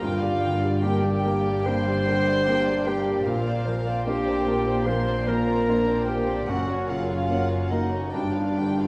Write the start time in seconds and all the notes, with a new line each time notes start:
Already playing: A#3 A#4
0.00 G1 G2 A#3 F4 A#4 F5 G5
0.20 G3 G4 D5
0.40 A#3 G4 A#4 G5
0.45 D3
0.60 G3 G4 D5
0.80 A#3 G4 A#4 G5
0.84 D4 G4
1.01 G3 G4 D5
1.20 A#3 G4 G5
1.24 A#3 A#4
1.42 G3 G4 D5
1.63 D3 A#3 A#4 C5 G5 C6
1.67 G2
1.86 G3 G4 D5
2.06 D3 A#3 G4 A#4 G5
2.26 G3 G4 D5
2.45 A#3 D4 G4 A#4 G5
2.66 G3 G4 D5
2.86 A#3 G4 A#4 G5
3.04 G3 G4 D5
3.24 A#1 A#2 A#3 F4 A#4 C5 F5
3.46 C4 C5 D5
3.65 F3 A#3 A#4 C5
3.85 C4 C5 D5
4.04 A#3 D4 G4 A#4 C5 G5
4.26 C4 C5 D5
4.44 A#3 A#4 C5
4.66 C4 C5 D5
4.85 A#2 F3 A#3 A#4 C5 C6
5.06 C4 C5 D5
5.26 F3 A#3 A#4 C5 A#5
5.47 C4 C5 D5
5.66 A#3 D4 A#4 C5
5.87 C4 C5 D5
6.06 A#3 G4 A#4 C5 G5
6.27 C4 C5 D5
6.46 F#1 F#2 A#3 F#4 A#4 F#5
6.67 C#4 F#4 C#5
6.87 C#3 A#3 F4 A#4 C#5 F5 F#5
7.07 C#4 F#4 C#5
7.28 A#3 C#4 A#4 C#5 F#5
7.49 C#4 F#4 C#5
7.70 A#3 D#4 A#4 C#5 D#5 F#5
7.91 C#4 F#4 C#5
8.12 G1 G2 D4 G4 D5 G5
8.33 B3 F4 F5
8.56 D3 D4 G4 B4 G5
8.78 B3 F4 F5